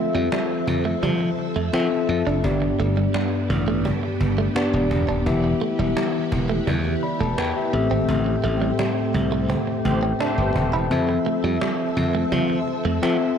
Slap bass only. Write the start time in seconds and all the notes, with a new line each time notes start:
0.15 F2
0.68 F2
1.03 F3
1.56 F2
1.73 F3
2.09 F2
2.26 F#1
2.44 G1
2.80 G1
3.50 A1
4.21 G1
4.73 E1
4.91 E1
5.09 D#1
5.26 E1
5.79 E1
6.32 E1
6.67 E2
7.20 E1
7.38 E2
7.73 A1
7.91 G#1
8.09 A1
8.44 A1
9.14 C2
9.85 A1
10.38 G1
10.56 D#1
10.73 E1
10.91 F2
11.44 F2
11.97 F2
12.32 F3
12.85 F2
13.03 F3